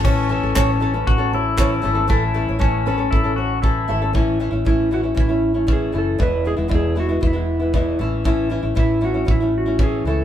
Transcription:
<<
  \new Staff \with { instrumentName = "Steel-string acoustic guitar" } { \time 4/4 \key a \major \tempo 4 = 117 cis''8 r16 a'16 cis''16 r8 b'8 r16 cis''16 r16 cis''16 r16 b'16 r16 | a'16 r8 cis''8 r16 b'16 r16 a'8 cis''16 r8. e''16 r16 | r1 | r1 |
r1 | }
  \new Staff \with { instrumentName = "Electric slide guitar" } { \time 4/4 \key a \major r1 | r1 | r4 e'8 fis'8 e'4 gis'8 a'8 | b'8 gis'8 gis'8 fis'8 e'4. r8 |
r4 e'8 fis'8 e'8 fis'8 gis'8 a'8 | }
  \new Staff \with { instrumentName = "Pedal steel guitar" } { \time 4/4 \key a \major cis'2 fis'8 e'4. | e'4 cis'4 e'8 fis'8 e'4 | r1 | r1 |
r1 | }
  \new Staff \with { instrumentName = "Nylon-string guitar" } { \time 4/4 \key a \major <a, e a cis' a'>8 <e a cis' a'>8 <a, e a cis' a'>8 <e a cis' a'>16 <a cis' a'>8 <a cis' a'>8. <a, e a cis' a'>8 <e a cis' a'>16 <a cis' a'>16 | <a, e a cis' a'>8 <e a cis' a'>8 <a, e a cis' a'>8 <e a cis' a'>16 <a cis' a'>8 <a cis' a'>8. <a, e a cis' a'>8 <e a cis' a'>16 <a cis' a'>16 | <a, e a cis' e'>8 <e a cis' e'>16 <a cis' e'>16 <a, e a cis' e'>8 <e a cis' e'>16 <a cis' e'>16 <e a cis' e'>16 <a cis' e'>8 <a cis' e'>16 <a, e a cis' e'>8 <e a cis' e'>8 | <e, b, e gis b e'>8 <e gis b e'>16 <e gis b e'>16 <e, b, e gis b e'>8 <e gis b e'>16 <e gis b e'>16 <e gis b e'>16 <e gis b e'>8 <e gis b e'>16 <e, b, e gis b e'>8 <e a cis' e'>8 |
<a, e a cis' e'>8 <e a cis' e'>16 <a cis' e'>16 <a, e a cis' e'>8 <e a cis' e'>16 <a cis' e'>16 <e a cis' e'>16 <a cis' e'>8 <a cis' e'>16 <a, e a cis' e'>8 <e a cis' e'>8 | }
  \new Staff \with { instrumentName = "Fingered electric bass" } { \clef bass \time 4/4 \key a \major a,,8. a,,16 a,,4 a,,4. gis,,8 | a,,8. a,,16 a,,4 a,,4. gis,,8 | a,,8. a,,16 a,,4 a,,4. fis,,8 | e,,8. e,,16 e,,4 e,,4. a,,8~ |
a,,8. a,,16 a,,4 a,,4. cis,8 | }
  \new DrumStaff \with { instrumentName = "Drums" } \drummode { \time 4/4 <cymc bd>4 <hc bd>4 bd4 <hc bd>4 | bd4 bd4 bd4 bd4 | bd4 bd4 bd4 bd4 | bd4 bd4 bd4 bd4 |
bd4 bd4 bd4 bd4 | }
>>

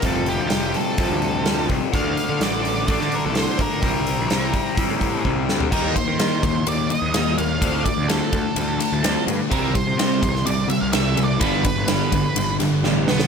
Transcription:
<<
  \new Staff \with { instrumentName = "Lead electric guitar" } { \time 4/4 \key d \minor \tempo 4 = 126 a'8 g'4 a'2 r8 | f''4 d''4 d''8 bes'16 a'16 c''8 bes'8~ | bes'2. r4 | bes'8 c''4. d''8 ees''4 f''8~ |
f''8 d''8 a'2~ a'8 r8 | bes'8 c''4. d''8 e''16 f''16 \tuplet 3/2 { e''4 d''8 } | b'8 b'2 r4 <b b'>8 | }
  \new Staff \with { instrumentName = "Clean electric guitar" } { \clef bass \time 4/4 \key d \minor <f g c'>8 <f g>8 <f g>8 <f g>8 <f g c'>8 <f g>8 <f g c'>8 <f g>8 | <d a d'>8 <d a>8 <d a>8 <d a>8 <d a d'>8 <d a>8 <d a d'>8 <d a>8 | <c e g>8 <c e>8 <c e>8 <c e>8 <c e g>8 <c e>8 <c e g>8 <c e>8 | <g bes ees' g'>8 r8 <g bes ees' g'>8 r4. <g bes ees' g'>8 r8 |
<f c' d' a'>8 r8 <f c' d' a'>8 r4. <f c' d' a'>8 r8 | <g c' d' g'>8 r8 <g c' d' g'>8 r4. <g c' d' g'>8 r8 | <g b d' g'>8 r8 <g b d' g'>8 r4. <g b d' g'>8 r8 | }
  \new Staff \with { instrumentName = "Distorted electric guitar" } { \clef bass \time 4/4 \key d \minor <f, c f>2 <f, c f>2 | <d a d'>2 <d a d'>2 | <c g c'>2 <c g c'>2 | <ees bes ees'>8 <ees bes>8 <ees bes>8 <ees bes>8 <ees bes>8 <ees bes>8 <ees bes>8 <ees bes>8 |
<d a d'>8 <d a>8 <d a>8 <d a>8 <d a>8 <d a>8 <d a>8 <d a>8 | <c g c'>8 <c g>8 <c g>8 <c g>8 <c g>8 <c g>8 <c g>8 <c g>8 | <g, d g>8 <g, d>8 <g, d>8 <g, d>8 <g, d>8 <g, d>8 <g, d>8 <g, d>8 | }
  \new Staff \with { instrumentName = "Overdriven electric guitar" } { \clef bass \time 4/4 \key d \minor r1 | r1 | r1 | r1 |
r1 | <c g c'>8 <c g>8 <c g>8 <c g>8 <c g>8 <c g>8 <c g>8 <c g>8 | <g, d g>8 <g, d>8 <g, d>8 <g, d>8 <g, d>8 <g, d>8 <g, d>8 <g, d>8 | }
  \new Staff \with { instrumentName = "Picked electric bass" } { \clef bass \time 4/4 \key d \minor f,,8. d,16 f,,8 r8. d,4~ d,16 c,16 r16 | d,8 r16 d16 a,,4~ a,,16 d8 c,8 r8. | c,8. bes,,16 c,8 r8. a,8. c,8 d,8 | ees,8 r16 ees8. ees,8 ees,8 r16 ees,8. ees,8 |
d,8 r16 d,8 r16 d,16 r16 d,8 r16 d,8 r16 g,16 r16 | c,8 r16 c8. c,8 c,8 r16 c,8. c,8 | g,,8 r16 g,,8 r16 g,,16 r16 g,,8 g,,8 a,,8 b,,8 | }
  \new DrumStaff \with { instrumentName = "Drums" } \drummode { \time 4/4 <hho bd>8 hho8 <hho sn>8 hho8 <hho bd>8 hho8 <hho sn>8 <hho bd>8 | <hho bd>8 hho8 <hho sn>8 hho8 <hho bd>16 sn16 hho8 <hho sn>8 <hho bd>8 | <hho bd>8 hho8 <hho sn>8 <hho bd>8 <hho bd>8 <hho bd>8 bd8 sn16 tomfh16 | <cymc bd>8 <bd cymr>8 <cymr sn>8 <bd cymr>8 cymr8 cymr8 <cymr sn>8 cymr8 |
<bd cymr>8 <bd cymr>8 <cymr sn>8 <bd cymr>8 cymr8 <cymr sn>8 <cymr sn>8 cymr8 | <bd cymr>8 <bd cymr>8 <cymr sn>8 <bd cymr>16 sn16 cymr8 cymr8 <cymr sn>8 cymr8 | <bd cymr>8 <bd cymr>8 <cymr sn>8 <bd cymr>8 cymr8 <cymr sn>8 sn8 sn16 sn16 | }
>>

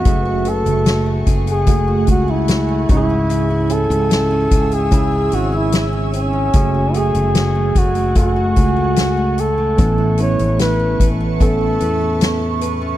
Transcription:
<<
  \new Staff \with { instrumentName = "Ambient pad" } { \time 4/4 \key fis \minor \tempo 4 = 74 << { <a fis'' cis'''>2.~ <a fis'' cis'''>8 <cis'' e'' e'''>8~ | <cis'' e'' e'''>1 | <a fis'' cis'''>1 | <b' e'' cis'''>1 | } \\ { gis''1~ | gis''1~ | gis''1 | a''1 | } >> }
  \new Staff \with { instrumentName = "Flugelhorn" } { \time 4/4 \key fis \minor fis'8 a'4 r16 gis'8. fis'16 e'8. e'8~ | e'8 a'4~ a'16 gis'8. fis'16 e'8 r16 cis'8~ | cis'8 gis'4 fis'8 fis'4. a'8~ | a'8 cis''8 b'8. r16 a'4. r8 | }
  \new Staff \with { instrumentName = "Tine electric piano" } { \time 4/4 \key fis \minor <a fis' gis'>8 <a fis' a'>4. <a fis' gis'>4. <cis' e' fis' gis'>8~ | <cis' e' fis' gis'>8 <cis' e'>4. <cis' e' gis'>2 | <a fis' gis'>8 <a fis' gis'>4. <a fis' a'>2 | <b cis' a'>8 <b cis' e'>4. <b cis' a'>2 | }
  \new Staff \with { instrumentName = "Tine electric piano" } { \clef bass \time 4/4 \key fis \minor cis4. r2 gis,8~ | gis,4 r2. | cis4. r2 r8 | <a, e>4. r2 r8 | }
  \new Staff \with { instrumentName = "Steel-string acoustic guitar" } { \time 4/4 \key fis \minor fis,16 fis'8 a16 fis'16 a16 gis'16 a16 fis,16 fis'16 gis'16 a16 fis'16 a16 cis16 cis'16 | cis16 e'8 cis'16 e'16 cis'16 gis'16 cis'16 cis16 e'16 gis'16 cis'16 e'16 cis'16 gis'16 cis'16 | fis,16 fis'16 gis'16 a16 fis'16 a16 gis'16 a16 fis,16 fis'16 gis'16 a16 fis'16 a8 a16 | a16 e'16 b'16 cis'16 e'16 cis'16 b'16 cis'16 a16 e'16 b'16 cis'16 e'16 cis'16 b'16 cis'16 | }
  \new Staff \with { instrumentName = "Fretless electric bass" } { \clef bass \time 4/4 \key fis \minor fis,,8. fis,,8. fis,,4 cis,4 cis,8~ | cis,8. cis,8. cis,4 gis,,4. | fis,,8. fis,,8. fis,,4 cis,4. | a,,8. a,,8. a,,4 e,4. | }
  \new DrumStaff \with { instrumentName = "Drums" } \drummode { \time 4/4 <hh bd>8 hh16 hh16 <hh sn>8 <hh bd>16 hh16 <hh bd>8 <hh bd>8 <hh sn>8 <hh bd>8 | hh8 hh16 hh16 <hh sn>8 <hh bd>16 hh16 <hh bd>8 hh8 <hh sn>8 hh8 | <hh bd>8 hh16 hh16 <hh sn>8 <hh bd>16 hh16 <hh bd>8 <hh bd>8 <hh sn>8 hh8 | <hh bd>8 hh16 hh16 <hh sn>8 <hh bd>8 <hh bd>8 hh8 <hh sn>8 hh8 | }
>>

